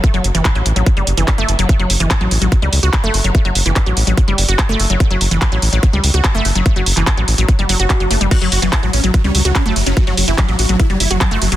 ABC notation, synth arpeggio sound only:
X:1
M:4/4
L:1/16
Q:1/4=145
K:F#phr
V:1 name="Synth arpeggio sound" clef=bass
z F, z E, z F, z F, z G, z E, z A, z F, | z F, z E, z F, z F, z G, z F z A, z F, | z F, z E, z F, z F, z G, z F z A, z F, | z F, z E, z F, z F, z G, z F z A, z F, |
z F, z E, z F, z F, z G, F, F z F, A, G, | z F, z E, z F, z F, z G, z F z A, z F, | z F, z E, z F, z F, z G, z F z A, z F, |]